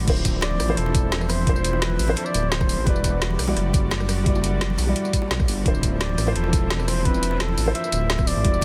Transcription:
0.05 D1 F3 C4 D4 E4, kick, closed hi-hat, crash
0.10 C5
0.17 tambourine
0.25 kick, closed hi-hat, tambourine, high bongo
0.41 D5, snare, closed hi-hat, high bongo
0.51 high conga
0.60 A1, cross-stick, open hi-hat, tambourine
0.68 F3 D4 E4 C5, high bongo, high conga
0.77 E1 A4, cross-stick, closed hi-hat
0.86 high bongo
0.95 kick, closed hi-hat, tambourine
1.12 snare, closed hi-hat, high bongo, high conga
1.21 cross-stick, tambourine
1.29 C5, cross-stick, open hi-hat, tambourine, high bongo
1.45 F3 D4 E4, kick, closed hi-hat
1.49 C5
1.55 tambourine, high bongo
1.64 closed hi-hat, tambourine
1.73 high bongo
1.82 B4, snare, closed hi-hat
1.90 high conga
1.99 A1, open hi-hat, tambourine, high bongo
2.07 F3 D4 E4 C5, high conga
2.16 A4, closed hi-hat, high bongo
2.25 D5, tambourine
2.34 D1, closed hi-hat, tambourine
2.43 high bongo
2.52 C5, snare, closed hi-hat
2.61 kick, cross-stick, tambourine, high bongo
2.69 open hi-hat, tambourine
2.78 A1
2.84 E1 G3 E4 F#4 B4 D5, kick, closed hi-hat, high bongo
2.88 D5
2.96 tambourine
3.04 kick, closed hi-hat, tambourine, high bongo
3.22 snare, closed hi-hat
3.30 high bongo, high conga
3.39 B1, cross-stick, open hi-hat, tambourine
3.47 G3 E4 F#4 D5, high bongo, high conga
3.56 F#1, cross-stick, closed hi-hat
3.73 kick, closed hi-hat, tambourine, high bongo
3.91 snare, closed hi-hat, high bongo, high conga
4.00 cross-stick, tambourine
4.09 cross-stick, open hi-hat, tambourine
4.18 high bongo
4.24 G3 E4 F#4, kick, closed hi-hat
4.28 D5
4.35 tambourine, high bongo
4.44 closed hi-hat, tambourine
4.61 snare, closed hi-hat, high bongo
4.70 high conga
4.78 B1, open hi-hat, tambourine, high bongo
4.86 G3 E4 F#4 D5, high conga
4.96 closed hi-hat
5.05 tambourine, high bongo
5.13 kick, closed hi-hat, tambourine
5.22 high bongo
5.31 B1, snare, closed hi-hat
5.40 kick, cross-stick, tambourine
5.48 G1, open hi-hat, tambourine, high bongo
5.64 D1 F3 C4 D4 E4, kick, closed hi-hat
5.68 C5
5.75 tambourine
5.83 kick, closed hi-hat, tambourine, high bongo
6.00 D5, snare, closed hi-hat, high bongo
6.09 high conga
6.18 A1, cross-stick, open hi-hat, tambourine
6.26 F3 D4 E4 C5, high bongo, high conga
6.35 E1 A4, cross-stick, closed hi-hat
6.44 high bongo
6.53 kick, closed hi-hat, tambourine
6.70 snare, closed hi-hat, high bongo, high conga
6.80 cross-stick, tambourine
6.88 C5, cross-stick, open hi-hat, tambourine, high bongo
7.03 F3 D4 E4 B4, kick, closed hi-hat
7.07 C4
7.14 tambourine, high bongo
7.23 closed hi-hat, tambourine
7.31 high bongo
7.40 A4, snare, closed hi-hat
7.49 high conga
7.57 A1, open hi-hat, tambourine, high bongo
7.65 F3 D4 E4 C5, high conga
7.75 E5, closed hi-hat, high bongo
7.84 tambourine
7.92 D1, closed hi-hat, tambourine
8.01 high bongo
8.10 snare, closed hi-hat
8.18 kick, cross-stick, tambourine, high bongo
8.27 D5, open hi-hat, tambourine
8.36 A1
8.43 E1 G3 E4 F#4 D5, kick, closed hi-hat, high bongo
8.47 D5
8.54 tambourine
8.61 high bongo

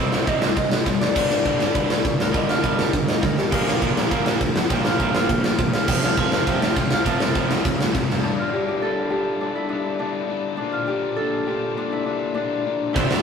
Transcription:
Already playing: C3 G3 C5 D#5
0.00 C2 C4
0.12 C2, snare
0.26 C2 C3 G3 C4 D#5, kick, ride
0.42 C2 C5, snare
0.56 C2 C3 G3 D#5, kick, ride
0.72 C2, snare
0.86 G1 C3 G3 C5, kick, ride
1.00 F1 D5, snare
1.15 G1 G2 D3 G3, kick, crash
1.30 G1, snare
1.45 G1 G2 D3 G3, kick, ride
1.60 G1, snare
1.75 G1 G2 D3 G3, kick, ride
1.90 snare
2.04 C2 G2 D3, kick, ride
2.20 D2 A#4, snare
2.34 G1 G2 D3 G3 D#5, kick, ride
2.49 G1 F5, snare
2.63 G1 G2 D3 G3, kick, ride
2.79 G1, snare
2.93 G1 G2 D3, kick, ride
3.08 G1 D#5, snare
3.22 D2 G2 D3 A#4, kick, snare
3.37 G1 G4, snare
3.51 A#1 A#2 F3 A#3 A#4, kick, crash
3.66 A#1, snare
3.81 A#1 A#2 F3 A#3, kick, ride
3.96 A#1, snare
4.11 A#1 A#2 F3 A#3, kick, ride
4.26 snare
4.40 D2 A#2 F3 A#3, kick, ride
4.54 F2, snare
4.69 A#1 A#2 F3 A#3 G5, kick, ride
4.85 A#1 F5, snare
4.99 A#1 A#2 F3 A#3 C5, kick, ride
5.15 A#1 F5, snare
5.28 A#1 A#2 F3 A#3 G5, kick, ride
5.44 A#1 F5, snare
5.58 F1 A#2 F3 A#3 C5, kick, ride
5.74 G1 F5, snare
5.87 F1 F2 C3 F3 G5, kick, crash
6.03 F1 F5, snare
6.17 F1 F2 C3 F3 C5, kick, ride
6.32 F1 F5, snare
6.47 F1 F2 C3 F3 G5, kick, ride
6.62 F5, snare
6.76 A1 F2 C3 F3 C5, kick, ride
6.91 C2 F5, snare
7.05 F1 F2 C3 F3 F5 A5, kick, ride
7.20 F1, snare
7.35 F1 F2 C3 F3, kick, ride
7.50 F1, snare
7.65 F1 F2 C3 F3, kick, ride
7.80 F1, snare
7.93 C2 F2 C3 F3, kick, ride
8.10 F1, snare
8.24 G2 D3 G3 B3 D4
8.39 F4
8.53 G2 D3 G3 B3 D4 G4
8.68 G4
8.82 G2 D3 G3 B3 D4 A4
9.10 G2 D3 G3 B3 D4 G4
9.41 G2 D3 G3 B3 D4
9.55 E4
9.69 G2 D3 G3 B3 D4
9.99 G2 D3 G3 B3 D4
10.30 G2 D3 G3 B3 D4
10.57 A#2 D3 F3 A#3 D4
10.61 D4
10.72 F4
10.87 A#2 D3 F3 A#3 D4 G4
11.16 A#2 D3 F3 A#3 D4 A4
11.47 A#2 D3 F3 A#3 D4 G4
11.77 A#2 D3 F3 A#3 D4
11.92 E4
12.05 A#2 D3 F3 A#3 D4
12.34 A#2 D3 F3 A#3 D4
12.66 A#2 D3 F3 A#3 D4
12.93 C2 C3 E3 G3 C4 E4, kick, crash
12.97 C5
13.11 F2, snare

